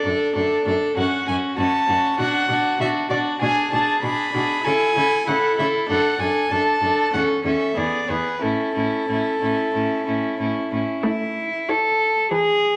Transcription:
Already playing: D5
0.04 F#2 D4 A4
0.35 F#2 D4 A4
0.65 F#2 D4 A4
0.96 F#2 C#4 F#4 F#5
1.28 F#2 C#4 F#4 G#5
1.57 F#2 C#4 F#4 A5
1.88 F#2 C#4 F#4
2.19 B2 D4 F#4 F#5
2.49 B2 D4 F#4
2.79 B2 D4 F#4 E5
3.10 B2 D4 F#4 D5
3.41 B2 D4 G#4 G#5
3.71 B2 D4 G#4 A5
4.02 B2 D4 G#4 B5
4.33 B2 D4 G#4
4.64 C#3 E4 A4 G#5
4.95 C#3 E4 A4
5.26 C#3 E4 A4 F#5
5.58 C#3 E4 A4 E5
5.89 F#2 D4 A4 F#5
6.19 F#2 D4 A4 G#5
6.50 F#2 D4 A4 A5
6.81 F#2 D4 A4
7.13 E2 C#4 A4 F#5
7.45 E2 C#4 A4 E5
7.77 E2 B3 G#4 D5
8.09 E2 B3 G#4 B4
8.41 A2 C#4 E4 A4
8.75 A2 C#4 E4
9.08 A2 C#4 E4
9.41 A2 C#4 E4
9.74 A2 C#4 E4
10.06 A2 C#4 E4
10.39 A2 C#4 E4
10.72 A2 C#4 E4
11.04 A3 E4
11.69 A4 C#5
12.32 E3 G#4

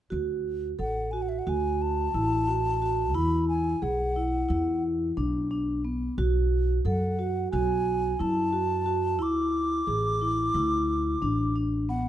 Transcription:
0.10 D2 F#4
0.79 A1 A4 F#5
1.11 F#4 G#5
1.22 F#5
1.29 E5
1.39 F#5
1.47 D2 F#4 G#5
1.82 A5
2.14 A1 E4
2.48 F#4
2.82 F#4
3.14 E2 E4 B5
3.48 G#5
3.82 B1 G#4 F#5
4.16 E4
4.49 E2 E4
5.17 B1 D4
5.51 D4
5.84 B3
6.18 B1 F#4
6.85 F#2 A4 F#5
7.19 F#4
7.51 B1 F#4 G#5
8.19 F#2 E4 A5
8.53 F#4
8.86 F#4
9.19 D2 E4 D6
9.87 A1 G#4
10.22 E4
10.54 D2 E4
11.22 A1 D4
11.56 D4
11.89 B3 F#5

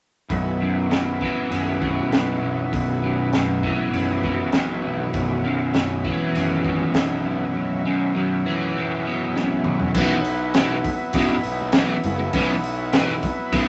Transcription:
0.29 B0 B1 F#3 B3 E4, kick, open hi-hat
0.62 F#2
0.91 F#2, snare, open hi-hat
1.21 E3, kick
1.50 B0 F#2, open hi-hat
1.82 B2, kick
2.11 B1 F#2, snare, open hi-hat
2.43 B1
2.72 B0 B1, kick, open hi-hat
3.03 F#2
3.33 F#2, snare, open hi-hat
3.63 E3, kick
3.93 B0 F#2, open hi-hat
4.23 B2, kick
4.52 B1 F#2, snare, open hi-hat
4.85 B1
5.13 B0 B1 C#4, kick, open hi-hat
5.45 F#2
5.74 F#2, snare, open hi-hat
6.04 E3, kick
6.35 B0 F#2, open hi-hat
6.65 B2, kick
6.94 B1 F#2, snare, open hi-hat
7.25 B1
7.56 B1
7.86 F#2
8.16 F#2
8.46 E3
8.77 F#2
9.07 B2
9.36 F#2, snare
9.64 B1, mid tom
9.80 floor tom
9.93 B1 F#3 B3 E4, kick, crash
9.97 F#2 B2 E3
10.25 open hi-hat
10.54 B1 F#2 B2 E3, snare, open hi-hat
10.84 kick, open hi-hat
11.13 B1 F#2 B2 E3, kick, open hi-hat
11.30 high conga
11.44 B1, open hi-hat
11.61 high conga
11.72 B1 F#2 B2 E3, snare, open hi-hat
12.04 F#1, open hi-hat, low conga
12.19 muted overdriven electric guitar stroke
12.33 B1 F#2 B2 E3, kick, open hi-hat
12.64 open hi-hat
12.93 B1 F#2 B2 E3, snare, open hi-hat
13.23 kick, open hi-hat, low conga
13.52 B1 F#2 B2 E3, kick, open hi-hat

